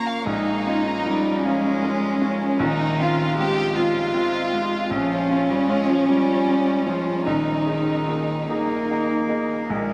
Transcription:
Already playing: upright piano F3 C#4 F4, cello A#3
0.06 violin section F5
0.25 upright piano A#1, cello G#3, violin section D#4, harp A#4
0.47 harp F5
0.66 upright piano C#4 F4, harp C#5
0.86 harp F5
1.06 upright piano F3 C#4 F4, cello G3, harp A#4
1.26 harp C#5
1.44 upright piano F3 C#4 F4, cello G#3, violin section C#4, harp F5
1.65 harp C#5
1.82 upright piano C#4 F4, harp A#4
2.21 upright piano F3 C#4 F4, harp C#5
2.42 harp C#5
2.59 upright piano A#1, cello D#3, violin section D#4, harp F4
2.80 harp C5
2.99 upright piano C4 F4, violin section F4
3.19 harp C5
3.38 upright piano G#3 C4 F4, harp F4, violin section G4
3.74 upright piano G#3 C4 F4, violin section F4, harp C5
4.14 upright piano C4 F4, harp F4
4.35 harp D#5
4.53 upright piano G#3 C4 F4
4.90 upright piano A#1, cello F3, violin section C#4, harp C#4
5.30 upright piano C#4 F4, harp F4
5.50 cello G3
5.68 upright piano G#3 C#4 F4, cello G#3, harp C#4
5.89 cello F3, harp F4
6.08 upright piano F3 C#4 F4, cello G3
6.27 harp F4
6.47 harp C#4, upright piano C#4 F4
6.67 harp C#5
6.86 cello F3, upright piano G#3 C#4 F4, harp F4
7.06 harp F4
7.25 upright piano A#1, cello D#3, harp D#4, violin section D#4
7.47 harp A#4
7.65 upright piano D#4 G#4
7.88 harp A#4
8.08 upright piano A#3 D#4 G#4, harp D#4
8.49 upright piano A#3 D#4 G#4, cello A#3, harp A#4
8.90 harp D#4, upright piano D#4 G#4
9.11 harp D#5
9.28 upright piano A#3 D#4 G#4
9.69 upright piano A#1, cello G#3, harp A#4
9.90 harp F5

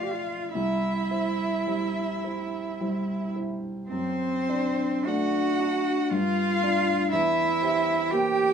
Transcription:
Already playing: grand piano A3, violin F5
0.00 grand piano F4 D5, cello G4
0.11 cello F4
0.52 grand piano C2, cello E4, violin E5
1.10 grand piano E4 C5
1.67 grand piano G3 E4 C5
2.24 grand piano E4 C5
2.81 grand piano G3 E4 C5
3.36 grand piano E4 C5
3.89 grand piano F#2, cello C4, violin C5
4.49 grand piano D4 D5
5.05 grand piano A3 D4 D5, cello F#4, violin F#5
5.59 grand piano D4 D5
6.10 grand piano G2, cello F4, violin F5
6.63 grand piano D4 D5
7.11 grand piano E2, cello E4, violin E5
7.62 grand piano G4 C5
8.11 grand piano A#3 G4 C5, cello G4, violin G5

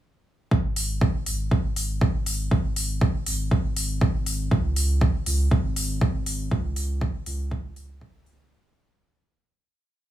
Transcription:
0.51 sub bass G#1, kick
0.76 open hi-hat
1.01 kick
1.26 sub bass G#1, open hi-hat
1.51 kick
1.76 open hi-hat
2.01 kick
2.26 open hi-hat
2.51 sub bass G#1, kick
2.76 open hi-hat
3.01 kick
3.26 sub bass G#1, open hi-hat
3.51 kick
3.77 open hi-hat
4.01 kick
4.26 open hi-hat
4.51 sub bass C#2, kick
4.76 open hi-hat
5.01 kick
5.26 sub bass C#2, open hi-hat
5.51 sub bass G#1, kick
5.76 open hi-hat
6.01 kick
6.26 open hi-hat
6.51 sub bass C#2, kick
6.76 open hi-hat
7.01 kick
7.26 sub bass C#2, open hi-hat
7.51 kick
7.76 open hi-hat
8.01 kick
8.26 open hi-hat

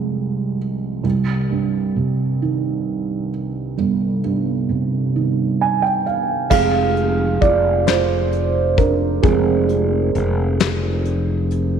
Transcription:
Already playing: felt piano C2 C3 F3 G#3
1.03 felt piano C2
1.50 felt piano G2
1.96 felt piano C3
2.42 felt piano D#3
3.77 felt piano G1
4.24 felt piano G2
4.69 felt piano C3
5.16 felt piano D#3
5.61 felt piano G#5
5.82 felt piano G5
6.06 felt piano F5
6.50 fretless electric bass F1, felt piano F3 G#3 C4 G#4 F5, kick, crash
6.96 closed hi-hat
7.41 fretless electric bass F1, felt piano F4 D5, kick, closed hi-hat
7.87 felt piano F4 C5, snare, closed hi-hat
8.32 closed hi-hat
8.78 felt piano D4 A#4, kick, closed hi-hat
9.23 fretless electric bass F1, felt piano F3 G#3 C4 G#4, kick, closed hi-hat
9.69 closed hi-hat
10.15 fretless electric bass F1, closed hi-hat
10.60 snare, closed hi-hat
11.05 closed hi-hat
11.51 closed hi-hat

